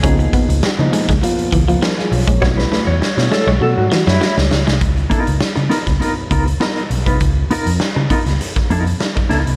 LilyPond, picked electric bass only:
\new Staff \with { instrumentName = "Picked electric bass" } { \clef bass \time 4/4 \key des \mixolydian \tempo 4 = 100 des,8 r16 des,16 r16 des16 r16 des,16 r8 des,8 r8 ces,16 bes,,16 | ces,8 r16 fes,16 r16 ces16 r16 ces,16 ces16 aes,16 r16 ges,16 r16 des,16 des,16 c,16 | des,8 r16 des,16 r16 des16 r16 des,16 r8 des,8 r8 ces,16 c,16 | des,8 r16 f,16 r16 des16 r16 des,16 r8 f,8 r8 des,16 c,16 | }